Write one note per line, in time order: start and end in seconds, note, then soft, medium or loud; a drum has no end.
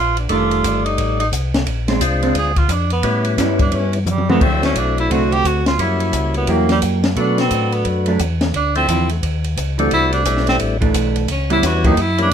0.00 0.28 A#1 medium
0.00 0.14 F4 medium
0.17 0.33 D4 soft
0.17 ride soft
0.29 0.63 F1 medium
0.29 0.81 D#3 medium
0.29 1.25 G3 medium
0.29 1.25 A3 medium
0.29 0.81 A3 medium
0.29 0.82 D4 medium
0.29 0.85 F4 medium
0.29 1.25 D5 medium
0.29 kick soft
0.29 ride medium
0.51 ride soft
0.63 0.97 G1 medium
0.63 kick soft
0.63 hi-hat pedal medium
0.63 ride medium
0.86 1.17 D#4 medium
0.86 ride soft
0.98 1.31 A1 medium
0.98 kick soft
0.98 ride medium
1.20 1.27 D#4 medium
1.20 ride soft
1.32 1.65 C2 medium
1.32 kick soft
1.32 hi-hat pedal medium
1.32 ride medium
1.54 snare soft
1.54 ride soft
1.66 2.00 A#1 medium
1.66 kick soft
1.66 ride medium
1.88 2.00 G#3 medium
1.88 2.00 C4 medium
1.88 2.00 D4 medium
1.88 snare soft
1.88 ride soft
2.00 2.34 C2 medium
2.00 2.53 G#3 medium
2.00 2.53 C4 medium
2.00 2.53 D4 medium
2.00 2.53 F4 medium
2.00 kick soft
2.00 hi-hat pedal medium
2.00 ride medium
2.23 2.34 G#3 medium
2.23 2.35 C4 medium
2.23 2.35 D4 medium
2.23 ride soft
2.35 2.68 D2 medium
2.35 2.60 G#4 medium
2.35 kick soft
2.35 ride medium
2.56 2.74 F4 medium
2.56 kick soft
2.56 ride soft
2.69 3.03 F2 medium
2.69 2.92 D4 medium
2.69 kick soft
2.69 hi-hat pedal medium
2.69 ride medium
2.90 3.24 B3 medium
2.90 ride soft
3.03 3.37 A2 medium
3.03 3.99 G3 medium
3.03 3.99 B3 medium
3.03 3.99 C#4 medium
3.03 3.99 E4 medium
3.03 kick soft
3.03 ride medium
3.25 ride soft
3.38 3.71 G2 medium
3.38 3.58 G3 medium
3.38 3.58 C#4 medium
3.38 3.59 E4 medium
3.38 kick soft
3.38 snare soft
3.38 hi-hat pedal medium
3.38 ride medium
3.59 3.77 D4 medium
3.59 kick medium
3.59 ride soft
3.72 4.06 G2 medium
3.72 kick soft
3.72 ride medium
3.76 3.95 C#4 medium
3.93 4.12 E3 soft
3.93 ride soft
4.06 4.40 F#2 medium
4.06 hi-hat pedal medium
4.06 high tom soft
4.11 4.30 G3 medium
4.18 high tom medium
4.29 4.40 D3 medium
4.29 4.40 A3 medium
4.29 4.45 B3 medium
4.29 4.41 C4 medium
4.29 4.41 F#4 medium
4.29 high tom medium
4.40 4.74 D2 medium
4.40 5.37 F#3 medium
4.40 5.37 A3 medium
4.40 5.37 C4 medium
4.40 4.64 C4 medium
4.40 5.37 D4 medium
4.40 5.37 E4 medium
4.40 kick medium
4.40 crash medium
4.63 4.80 C#4 medium
4.63 snare soft
4.63 ride soft
4.75 5.09 B1 medium
4.75 4.99 D4 medium
4.75 kick soft
4.75 hi-hat pedal soft
4.75 ride medium
4.98 5.13 E4 medium
4.98 ride soft
5.10 5.44 C2 medium
5.10 5.62 D3 medium
5.10 5.62 A3 medium
5.10 5.62 C4 medium
5.10 5.62 F#4 medium
5.10 5.34 F#4 medium
5.10 kick soft
5.10 ride medium
5.32 5.48 G4 loud
5.32 ride soft
5.44 5.78 D2 medium
5.44 5.67 F#4 medium
5.44 kick soft
5.44 hi-hat pedal medium
5.44 ride medium
5.66 5.84 F4 medium
5.66 snare medium
5.66 ride soft
5.79 6.12 F#2 medium
5.79 6.75 G3 medium
5.79 6.75 A#3 soft
5.79 6.75 C#4 soft
5.79 6.75 E4 soft
5.79 6.36 E4 medium
5.79 6.75 F#4 medium
5.79 kick soft
5.79 ride medium
6.00 ride soft
6.13 6.47 C#2 medium
6.13 kick soft
6.13 hi-hat pedal soft
6.13 ride medium
6.34 6.52 B3 medium
6.34 ride soft
6.47 6.81 E2 medium
6.47 7.00 F#3 soft
6.47 7.00 A#3 medium
6.47 6.71 A#3 medium
6.47 7.00 E4 medium
6.47 7.00 G4 medium
6.47 kick soft
6.47 ride medium
6.69 6.79 G3 medium
6.69 snare soft
6.69 ride soft
6.81 7.15 F#2 medium
6.81 kick soft
6.81 hi-hat pedal soft
6.81 ride medium
7.04 snare medium
7.04 ride soft
7.16 7.49 B2 medium
7.16 8.12 F#3 medium
7.16 7.36 F#3 soft
7.16 7.36 A3 medium
7.16 8.12 A3 medium
7.16 8.12 D4 soft
7.16 7.36 D4 medium
7.16 7.38 D4 medium
7.16 8.12 F#4 medium
7.16 8.12 B4 soft
7.16 kick soft
7.16 ride soft
7.38 7.75 C4 medium
7.38 snare soft
7.38 ride soft
7.50 7.84 A2 medium
7.50 kick soft
7.50 hi-hat pedal medium
7.50 ride medium
7.72 7.86 B3 medium
7.72 ride soft
7.85 8.18 F#2 medium
7.85 kick soft
7.85 ride medium
8.06 8.19 F#3 medium
8.06 8.19 A3 medium
8.06 8.19 D4 medium
8.06 ride soft
8.19 8.53 E2 medium
8.19 kick soft
8.19 hi-hat pedal medium
8.19 ride medium
8.41 snare soft
8.41 ride soft
8.54 8.87 D2 medium
8.54 8.75 D4 medium
8.54 kick soft
8.54 ride medium
8.75 8.87 F3 medium
8.75 8.87 A3 medium
8.75 8.87 C4 medium
8.75 9.08 C4 medium
8.75 8.87 D4 medium
8.75 8.87 E4 medium
8.75 ride soft
8.88 9.21 E2 medium
8.88 9.08 D3 medium
8.88 9.08 F3 medium
8.88 9.08 C4 medium
8.88 9.08 E4 medium
8.88 kick soft
8.88 hi-hat pedal soft
8.88 ride medium
9.09 9.17 A3 soft
9.09 ride soft
9.23 9.56 D#2 medium
9.23 kick soft
9.23 ride medium
9.44 ride soft
9.57 9.90 C#2 medium
9.57 kick soft
9.57 hi-hat pedal soft
9.57 ride medium
9.78 9.90 E3 medium
9.78 10.24 G3 medium
9.78 9.90 A3 medium
9.78 10.24 A3 medium
9.78 10.24 C4 medium
9.78 9.91 D4 medium
9.78 10.24 D4 medium
9.78 10.24 F#4 medium
9.78 ride soft
9.91 10.25 C2 medium
9.91 10.12 E4 loud
9.91 kick soft
9.91 ride medium
10.13 10.45 D4 medium
10.13 ride soft
10.25 10.59 B1 medium
10.25 10.77 G3 medium
10.25 10.77 A3 medium
10.25 10.77 C4 soft
10.25 10.78 D4 medium
10.25 10.78 E4 medium
10.25 kick soft
10.25 hi-hat pedal medium
10.25 ride medium
10.37 snare soft
10.47 10.56 C4 medium
10.47 snare soft
10.47 ride soft
10.59 10.93 A1 medium
10.59 kick soft
10.59 ride medium
10.81 11.26 E3 medium
10.81 11.26 A3 medium
10.81 11.26 D4 medium
10.81 kick soft
10.81 ride soft
10.94 11.27 B1 medium
10.94 kick soft
10.94 hi-hat pedal medium
10.94 ride medium
11.16 ride soft
11.28 11.62 C#2 medium
11.28 11.50 C#4 medium
11.28 kick soft
11.28 ride medium
11.50 11.95 E3 medium
11.50 11.62 G3 medium
11.50 11.95 G3 medium
11.50 11.95 B3 medium
11.50 11.62 B3 medium
11.50 11.95 C#4 medium
11.50 11.95 E4 medium
11.50 11.62 E4 medium
11.50 11.68 E4 medium
11.50 ride soft
11.62 11.96 E2 medium
11.62 11.86 F#4 medium
11.62 kick soft
11.62 snare soft
11.62 hi-hat pedal medium
11.62 ride medium
11.84 11.96 F#3 medium
11.84 11.96 A#3 medium
11.84 12.03 D#4 medium
11.84 11.96 E4 medium
11.84 11.97 G4 medium
11.84 kick medium
11.84 ride soft
11.97 12.30 F#2 medium
11.97 kick soft
11.97 ride medium
12.01 12.21 E4 medium
12.18 12.30 E3 medium
12.18 12.30 G3 medium
12.18 12.30 A#3 medium
12.18 12.30 C#4 medium
12.18 12.34 D4 medium
12.18 12.30 E4 medium
12.18 ride soft